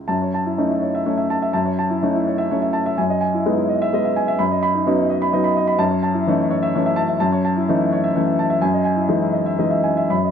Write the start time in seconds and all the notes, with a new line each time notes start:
Already playing: G#3 C#4 E4
0.08 F#2 A5
0.22 C#5
0.34 A5
0.46 E4
0.58 A3 C#4 D#4
0.70 E4
0.82 C#5
0.95 E5
1.06 A3 C#4 C#5
1.17 E5
1.30 A5
1.42 E5
1.53 F#2 A5
1.66 C#5
1.79 A5
1.90 E4
2.03 A3 C#4 D#4
2.15 E4
2.27 C#5
2.38 E5
2.51 A3 C#4 C#5
2.62 E5
2.73 A5
2.86 E5
2.98 F#2 G#5
3.10 D#5
3.21 G#5
3.34 E4
3.46 G#3 B3 D#4
3.57 E4
3.69 D#5
3.82 E5
3.93 G#3 B3 D#5
4.05 E5
4.16 G#5
4.28 E5
4.39 F#2 B5
4.51 D#5
4.63 B5
4.75 D#4
4.87 F#3 B3 C#4 D#4
4.98 D#4
5.10 D#5
5.22 B5
5.33 F#3 B3 D#4 D#5
5.44 B5
5.57 D#5
5.67 B5
5.79 F#2 A5
5.91 C#5
6.03 A5
6.14 E4
6.27 E3 A3 C#4 D#4
6.39 E4
6.50 C#5
6.63 E5
6.75 E3 A3 C#4 C#5
6.86 E5
6.96 A5
7.09 E5
7.20 F#2 A5
7.32 C#5
7.45 A5
7.57 E4
7.69 E3 A3 C#4 D#4
7.80 E4
7.92 C#5
8.04 E5
8.16 E3 A3 C#4 C#5
8.27 E5
8.39 A5
8.50 E5
8.61 F#2 G#5
8.74 D#5
8.85 G#5
8.96 E4
9.08 E3 G#3 D#4
9.20 E4
9.33 D#5
9.46 E5
9.59 E3 G#3 D#4 D#5
9.71 E5
9.84 G#5
9.97 E5
10.10 F#2 B5
10.24 D#5